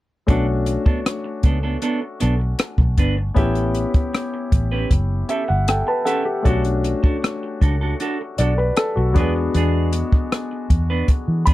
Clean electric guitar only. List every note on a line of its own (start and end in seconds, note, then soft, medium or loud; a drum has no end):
0.28 0.45 B3 medium
0.28 0.45 D4 medium
0.28 0.45 A4 medium
0.67 muted clean electric guitar stroke soft
0.86 1.00 B3 soft
0.86 0.99 D4 soft
0.86 0.99 A4 soft
1.06 muted clean electric guitar stroke soft
1.24 muted clean electric guitar stroke soft
1.44 1.57 B3 medium
1.44 1.57 D4 medium
1.44 1.58 A4 medium
1.63 1.77 B3 soft
1.63 1.76 D4 soft
1.63 1.76 A4 medium
1.82 1.99 B3 medium
1.82 1.99 D4 medium
1.82 1.99 A4 medium
2.02 muted clean electric guitar stroke soft
2.20 2.34 B3 medium
2.20 2.34 D4 medium
2.20 2.34 A4 medium
2.40 muted clean electric guitar stroke soft
2.59 muted clean electric guitar stroke soft
2.79 muted clean electric guitar stroke soft
2.98 3.15 B3 medium
2.98 3.15 D4 medium
2.98 3.15 B4 medium
3.17 muted clean electric guitar stroke soft
3.36 3.72 C#4 medium
3.36 3.72 G4 medium
3.36 3.73 A4 medium
3.95 muted clean electric guitar stroke soft
4.14 muted clean electric guitar stroke soft
4.34 muted clean electric guitar stroke soft
4.72 4.89 C#4 medium
4.72 4.89 G4 medium
4.72 4.88 B4 medium
4.91 muted clean electric guitar stroke soft
5.29 5.42 C#4 medium
5.29 5.43 G4 soft
5.29 5.43 A4 medium
5.48 muted clean electric guitar stroke soft
5.87 muted clean electric guitar stroke soft
6.06 6.23 C#4 medium
6.06 6.23 G4 medium
6.06 6.24 A4 medium
6.25 muted clean electric guitar stroke soft
6.45 6.62 D4 medium
6.45 6.62 F#4 medium
6.45 6.63 A4 medium
6.84 muted clean electric guitar stroke soft
7.03 7.17 D4 soft
7.03 7.16 F#4 soft
7.03 7.16 A4 medium
7.23 muted clean electric guitar stroke soft
7.43 muted clean electric guitar stroke soft
7.61 7.74 D4 medium
7.61 7.75 F#4 medium
7.61 7.75 A4 medium
7.81 7.94 D4 soft
7.81 7.94 F#4 medium
7.81 7.94 A4 medium
8.01 8.17 D4 medium
8.01 8.17 F#4 medium
8.01 8.17 A4 medium
8.21 muted clean electric guitar stroke soft
8.40 8.52 D4 medium
8.40 8.52 F#4 soft
8.40 8.53 A4 soft
8.59 muted clean electric guitar stroke soft
8.77 muted clean electric guitar stroke soft
8.97 muted clean electric guitar stroke soft
9.16 9.32 B3 medium
9.16 9.33 D4 medium
9.16 9.33 B4 medium
9.36 muted clean electric guitar stroke soft
9.55 9.90 B3 medium
9.55 9.91 D4 medium
9.55 9.91 G#4 medium
10.14 muted clean electric guitar stroke soft
10.32 muted clean electric guitar stroke soft
10.51 muted clean electric guitar stroke soft
10.90 11.07 B3 medium
10.90 11.06 D4 medium
10.90 11.06 B4 medium
11.09 muted clean electric guitar stroke soft
11.47 11.54 B3 medium
11.47 11.54 D4 medium
11.47 11.54 G#4 medium